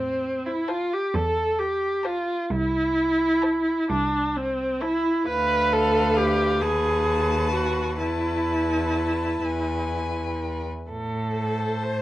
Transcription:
0.00 0.90 A2 medium
0.00 0.48 C4 medium
0.46 0.70 E4 medium
0.68 0.95 F4 medium
0.68 1.03 C5 medium
0.68 1.02 A5 medium
0.93 1.16 G4 medium
1.14 2.26 E2 medium
1.14 1.60 A4 medium
1.59 2.07 G4 medium
2.03 2.52 F4 medium
2.03 2.39 C5 medium
2.03 2.38 A5 medium
2.50 3.64 C2 medium
2.50 3.89 E4 medium
3.42 3.77 C5 medium
3.42 3.77 A5 medium
3.90 5.03 C2 medium
3.90 4.38 D4 medium
4.36 4.83 C4 medium
4.81 5.27 E4 medium
4.81 5.15 C5 medium
4.81 5.15 A5 medium
5.27 6.63 D2 medium
5.27 6.57 B4 medium
5.27 5.74 B4 loud
5.27 6.63 F5 medium
5.73 6.18 A4 medium
6.17 6.63 G4 medium
6.61 8.00 D#2 medium
6.61 7.52 G#4 medium
6.61 7.95 B4 medium
6.61 7.98 A5 medium
7.53 7.98 F#4 medium
7.99 9.44 E2 medium
7.99 10.37 E4 medium
7.99 9.41 B4 medium
7.99 9.46 A5 medium
9.44 10.66 E2 soft
9.44 10.66 B4 soft
9.44 10.68 G#5 soft
10.90 12.02 A2 soft
10.90 11.84 A4 medium
11.36 12.02 C5 soft
11.36 12.02 A5 soft
11.83 12.02 C5 medium

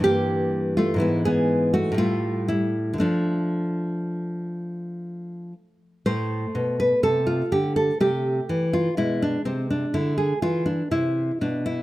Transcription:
0.00 0.94 G2 medium
0.00 0.95 E3 medium
0.00 0.74 G4 loud
0.05 0.73 A#3 medium
0.77 1.00 A3 medium
0.77 0.99 F4 medium
0.94 1.92 G#2 medium
0.94 1.93 E3 medium
0.98 1.24 G#3 medium
0.98 1.25 B3 medium
0.98 1.25 E4 medium
1.25 1.71 B3 medium
1.25 1.72 G#4 medium
1.74 1.97 A3 medium
1.74 1.98 F#4 medium
1.92 2.94 A2 medium
1.92 2.48 G3 medium
1.98 2.46 A3 medium
1.98 2.47 F4 medium
2.48 2.97 G3 medium
2.48 2.98 E4 medium
2.94 3.01 D3 medium
2.98 5.53 F3 medium
2.98 6.01 A3 medium
2.98 5.52 D4 medium
6.06 6.45 A2 medium
6.06 7.96 A3 soft
6.06 6.76 C5 medium
6.55 6.93 B2 medium
6.80 7.03 B4 medium
7.03 7.42 C3 medium
7.03 7.27 A4 medium
7.27 7.51 F4 medium
7.52 7.91 D3 medium
7.52 7.76 G4 medium
7.76 8.00 A4 medium
8.00 8.39 C3 medium
8.00 8.93 A3 soft
8.00 8.70 G4 medium
8.49 8.88 E3 medium
8.73 8.97 F4 medium
8.97 9.36 B2 medium
8.97 11.83 G#3 soft
8.97 9.21 E4 medium
9.22 9.45 D4 medium
9.45 9.84 C3 medium
9.45 9.70 C4 medium
9.70 9.94 D4 medium
9.94 10.32 D3 medium
9.94 10.17 E4 medium
10.18 10.42 G#4 medium
10.42 10.81 E3 medium
10.42 10.66 F4 medium
10.66 10.90 D4 medium
10.91 11.31 C3 medium
10.91 11.38 E4 medium
11.41 11.81 B2 medium
11.41 11.66 D4 medium
11.66 11.83 E4 medium

